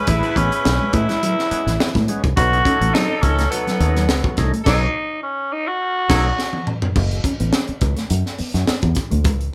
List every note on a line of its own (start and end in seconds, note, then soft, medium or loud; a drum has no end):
0.00 0.10 C#4 medium
0.00 2.05 E4 medium
0.00 2.05 G#4 medium
0.00 2.05 B4 loud
0.07 0.20 A1 loud
0.07 0.23 A2 medium
0.07 0.22 E3 medium
0.07 0.17 A3 medium
0.07 0.39 E4 loud
0.07 kick loud
0.07 closed hi-hat medium
0.23 0.29 B3 soft
0.23 0.29 C#4 soft
0.23 muted clean electric guitar stroke soft
0.23 closed hi-hat soft
0.36 0.49 A1 medium
0.36 0.51 G#3 medium
0.36 0.51 B3 medium
0.36 0.46 B3 medium
0.36 0.95 C#4 loud
0.36 0.51 C#4 medium
0.36 kick medium
0.36 closed hi-hat medium
0.52 closed hi-hat medium
0.65 0.78 B1 medium
0.65 0.80 A2 medium
0.65 0.80 E3 medium
0.65 snare loud
0.81 0.89 G#3 medium
0.93 1.06 A2 loud
0.93 1.08 G#3 medium
0.93 1.08 B3 medium
0.93 1.08 C#4 medium
0.93 2.08 E4 loud
0.93 kick medium
0.93 closed hi-hat medium
1.09 1.17 G#3 medium
1.09 1.15 B3 soft
1.09 1.15 C#4 soft
1.09 snare soft
1.09 closed hi-hat soft
1.22 1.36 A2 medium
1.22 1.36 E3 medium
1.22 1.31 F#3 medium
1.22 closed hi-hat medium
1.38 muted clean electric guitar stroke soft
1.38 snare soft
1.51 1.65 G#3 medium
1.51 1.65 B3 medium
1.51 1.65 C#4 medium
1.51 muted fingered electric bass stroke soft
1.51 closed hi-hat medium
1.66 1.77 A1 medium
1.66 1.74 E3 medium
1.66 1.72 B3 soft
1.66 1.72 C#4 soft
1.66 snare soft
1.66 closed hi-hat soft
1.80 1.86 B3 soft
1.80 1.86 C#4 soft
1.80 snare loud
1.95 2.07 A2 medium
1.95 2.06 A2 loud
1.95 2.07 E3 medium
1.95 2.03 G#3 medium
1.95 kick medium
1.95 snare soft
1.95 closed hi-hat soft
2.08 2.22 G#3 medium
2.08 2.17 G#3 medium
2.08 2.23 B3 medium
2.08 2.23 C#4 medium
2.08 closed hi-hat medium
2.24 2.35 C2 medium
2.24 kick loud
2.24 closed hi-hat soft
2.37 2.60 B1 loud
2.37 2.51 B2 medium
2.37 2.51 F#3 medium
2.37 4.63 F#3 medium
2.37 4.62 D#4 medium
2.37 2.96 F#4 loud
2.37 4.62 A4 loud
2.37 kick loud
2.37 closed hi-hat medium
2.52 2.58 C#4 soft
2.52 2.58 D#4 soft
2.52 muted clean electric guitar stroke soft
2.52 closed hi-hat soft
2.65 2.80 A3 medium
2.65 2.74 C#4 medium
2.65 2.80 C#4 medium
2.65 2.80 D#4 medium
2.65 kick medium
2.65 closed hi-hat medium
2.81 2.92 A1 medium
2.81 2.88 A3 medium
2.81 closed hi-hat soft
2.94 3.08 B2 medium
2.94 3.03 F#3 medium
2.94 3.09 F#3 medium
2.94 3.24 D#4 loud
2.94 snare loud
3.10 muted clean electric guitar stroke soft
3.22 3.46 C#2 medium
3.22 3.37 A3 medium
3.22 3.52 C#4 medium
3.22 3.37 C#4 medium
3.22 3.37 D#4 medium
3.22 kick medium
3.22 closed hi-hat medium
3.38 3.46 A3 medium
3.38 3.44 C#4 soft
3.38 3.44 D#4 soft
3.38 snare soft
3.38 closed hi-hat soft
3.51 3.66 B2 medium
3.51 3.66 F#3 medium
3.51 4.37 B3 medium
3.51 closed hi-hat medium
3.67 3.75 F#3 medium
3.67 snare soft
3.67 closed hi-hat soft
3.80 4.08 D#2 medium
3.80 3.94 A3 medium
3.80 3.94 C#4 medium
3.80 3.95 D#4 medium
3.80 closed hi-hat medium
3.96 4.03 F#3 medium
3.96 4.01 C#4 soft
3.96 4.01 D#4 soft
3.96 snare soft
3.96 closed hi-hat medium
4.08 4.21 C#2 medium
4.08 4.15 C#4 soft
4.08 4.15 D#4 soft
4.08 snare loud
4.24 4.37 B2 medium
4.24 4.37 F#3 medium
4.24 kick medium
4.37 4.50 C2 medium
4.37 4.52 A3 medium
4.37 4.47 A3 medium
4.37 4.52 C#4 medium
4.37 4.52 D#4 medium
4.37 kick medium
4.37 snare soft
4.37 closed hi-hat medium
4.53 4.61 A3 medium
4.53 closed hi-hat soft
4.64 4.86 B1 loud
4.64 4.87 B2 loud
4.64 4.80 F#3 loud
4.64 4.86 F#3 loud
4.64 4.80 D#4 loud
4.64 5.19 D#4 loud
4.64 4.80 A4 loud
4.64 kick loud
4.64 snare loud
4.64 crash medium
5.23 5.54 C#4 medium
5.53 5.69 D#4 loud
5.67 6.67 F#4 loud
6.09 6.30 B1 loud
6.09 6.24 F#3 loud
6.09 6.29 A3 loud
6.09 6.29 C#4 loud
6.09 6.25 D#4 medium
6.09 6.30 D#4 loud
6.09 6.24 A4 medium
6.09 kick loud
6.09 snare loud
6.09 crash medium
6.39 snare medium
6.53 high tom medium
6.67 mid tom medium
6.82 floor tom medium
6.96 7.19 F#1 loud
6.96 kick loud
6.96 crash medium
7.11 muted clean electric guitar stroke soft
7.11 closed hi-hat soft
7.24 7.33 C#4 medium
7.24 kick medium
7.24 closed hi-hat medium
7.40 7.51 A1 medium
7.40 7.47 B3 medium
7.40 closed hi-hat soft
7.52 7.61 C#4 medium
7.52 snare loud
7.68 muted clean electric guitar stroke soft
7.68 muted fingered electric bass stroke soft
7.68 closed hi-hat soft
7.81 7.94 C#2 medium
7.81 kick medium
7.81 closed hi-hat medium
7.96 8.04 A3 medium
7.96 snare soft
7.96 closed hi-hat soft
8.10 8.23 F#2 medium
8.10 closed hi-hat medium
8.26 snare soft
8.38 8.47 B3 medium
8.38 muted fingered electric bass stroke soft
8.38 open hi-hat medium
8.54 8.65 F#2 medium
8.54 snare soft
8.54 closed hi-hat soft
8.67 8.76 B3 medium
8.67 muted fingered electric bass stroke soft
8.67 snare loud
8.81 8.94 E2 medium
8.81 kick medium
8.81 closed hi-hat soft
8.95 muted clean electric guitar stroke soft
8.95 kick medium
8.95 snare soft
8.95 closed hi-hat medium
9.11 9.26 D2 medium
9.11 9.19 A3 medium
9.11 closed hi-hat soft
9.24 9.48 C#2 loud
9.24 9.33 G#3 medium
9.24 kick loud
9.24 closed hi-hat medium
9.41 closed hi-hat soft